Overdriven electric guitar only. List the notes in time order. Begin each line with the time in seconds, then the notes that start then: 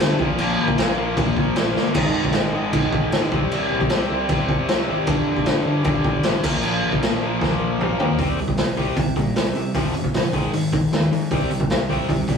0.01 G2 D3 G3
0.21 A#2 F3 A#3
0.40 A#2 F3 A#3
0.79 A#2 F3 A#3
0.98 A#2 F3 A#3
1.17 A#2 F3 A#3
1.57 A#2 F3 A#3
1.76 A#2 F3 A#3
1.95 G#2 D#3 G#3
2.35 G#2 D#3 G#3
2.54 G#2 D#3 G#3
2.74 G#2 D#3 G#3
3.14 G#2 D#3 G#3
3.33 C3 G3 C4
3.52 C3 G3 C4
3.92 C3 G3 C4
4.12 C3 G3 C4
4.31 C3 G3 C4
4.70 C3 G3 C4
4.88 C3 G3 C4
5.08 G2 D3 G3
5.46 G2 D3 G3
5.65 G2 D3 G3
5.84 G2 D3 G3
6.23 G2 D3 G3
6.44 A#2 F3 A#3
6.64 A#2 F3 A#3
7.03 A#2 F3 A#3
7.23 A#2 F3 A#3
7.42 A#2 F3 A#3
7.82 A#2 F3 A#3
8.00 A#2 F3 A#3
8.19 C3 G3 C4
8.38 C3 G3
8.59 C3 G3
8.77 C3 G3 C4
8.97 C3 G3
9.16 C3 G3
9.36 C3 G3
9.56 C3 G3
9.75 F2 C3 F3
9.95 F2 C3
10.14 F2 C3
10.33 G#2 D#3 G#3
10.53 G#2 D#3
10.72 G#2 D#3
10.93 G#2 D#3
11.12 G#2 D#3
11.32 C3 G3 C4
11.50 C3 G3
11.71 C3 G3
11.89 C3 G3 C4
12.10 C3 G3
12.29 C3 G3